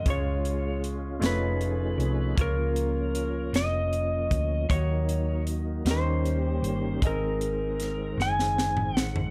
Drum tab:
HH |x-x-x-x-x-x-|x-x-x-x-x-x-|x-x-x-x-x-x-|x-x-x-------|
SD |------o-----|------o-----|------o-----|----o-ooo-o-|
T2 |------------|------------|------------|---------o--|
FT |------------|------------|------------|-----------o|
BD |o-----------|o---------o-|o-----------|o-----------|